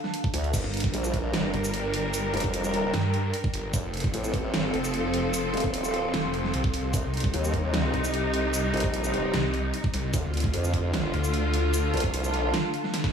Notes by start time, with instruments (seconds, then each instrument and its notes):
Already playing: ambient pad D4 A4 F5 A5
0.04 snare
0.14 closed hi-hat
0.24 kick
0.34 wobble bass D2, open hi-hat
0.44 closed hi-hat
0.54 wobble bass G1, string section G3 D4 A#4, kick, closed hi-hat, crash, shaker
0.64 detuned saw bass G1
0.74 closed hi-hat
0.77 closed hi-hat
0.80 ambient pad G5, kick, closed hi-hat
0.91 wobble bass A#1, ambient pad A#4, closed hi-hat
1.04 shaker
1.14 kick, closed hi-hat
1.34 snare, closed hi-hat
1.50 detuned saw bass G1, ambient pad A#5, closed hi-hat
1.64 shaker
1.74 closed hi-hat
1.94 open hi-hat
2.14 closed hi-hat, shaker
2.34 wobble bass F1, closed hi-hat
2.37 closed hi-hat
2.40 kick, closed hi-hat
2.54 closed hi-hat
2.64 shaker
2.74 closed hi-hat
2.94 detuned saw bass G2, snare, closed hi-hat
3.14 closed hi-hat
3.34 closed hi-hat
3.44 kick
3.54 detuned saw bass G1, open hi-hat
3.74 wobble bass F1, string section F3 C4 A4, ambient pad C4, kick, closed hi-hat, shaker
3.81 detuned saw bass F1, ambient pad A4
3.94 closed hi-hat
3.97 closed hi-hat
4.00 kick, closed hi-hat
4.14 wobble bass A1, ambient pad C6, closed hi-hat
4.24 shaker
4.34 kick, closed hi-hat
4.42 ambient pad F5
4.54 wobble bass G#1, snare, closed hi-hat
4.74 detuned saw bass F1, closed hi-hat
4.84 shaker
4.94 closed hi-hat
5.14 open hi-hat
5.34 closed hi-hat, shaker
5.54 wobble bass D#1, closed hi-hat
5.57 closed hi-hat
5.60 kick, closed hi-hat
5.74 closed hi-hat
5.84 shaker
5.94 closed hi-hat
6.14 detuned saw bass F1, snare, closed hi-hat
6.34 closed hi-hat
6.44 snare
6.54 detuned saw bass C2, closed hi-hat
6.64 kick
6.74 open hi-hat
6.94 wobble bass C2, string section C3 G3 D#4, kick, closed hi-hat, shaker
7.04 detuned saw bass C2
7.14 closed hi-hat
7.17 closed hi-hat
7.20 kick, closed hi-hat
7.28 ambient pad G4
7.34 wobble bass D#2, closed hi-hat
7.44 ambient pad D#5, shaker
7.54 kick, closed hi-hat
7.74 wobble bass D2, snare, closed hi-hat
7.94 detuned saw bass C2, closed hi-hat
8.04 shaker
8.14 closed hi-hat
8.34 open hi-hat
8.54 closed hi-hat, shaker
8.74 wobble bass A#1, closed hi-hat
8.77 closed hi-hat
8.80 kick, closed hi-hat
8.94 closed hi-hat
9.04 shaker
9.14 closed hi-hat
9.34 detuned saw bass C2, snare, closed hi-hat
9.54 closed hi-hat
9.74 closed hi-hat
9.84 kick
9.94 detuned saw bass C2, open hi-hat
10.14 wobble bass D2, string section D3 A3 F4, ambient pad D4, kick, closed hi-hat, shaker
10.24 detuned saw bass D2
10.34 closed hi-hat
10.37 ambient pad F5, closed hi-hat
10.40 kick, closed hi-hat
10.54 wobble bass F2, closed hi-hat
10.58 ambient pad A4
10.64 shaker
10.74 kick, closed hi-hat
10.94 snare, closed hi-hat
11.14 detuned saw bass D2, closed hi-hat
11.24 shaker
11.34 closed hi-hat
11.54 ambient pad A5, open hi-hat
11.74 closed hi-hat, shaker
11.94 wobble bass C2, closed hi-hat
11.97 closed hi-hat
12.00 kick, closed hi-hat
12.14 closed hi-hat
12.24 shaker
12.34 wobble bass B1, open hi-hat
12.54 snare, closed hi-hat
12.74 closed hi-hat
12.84 snare
12.94 snare, closed hi-hat
13.04 kick, snare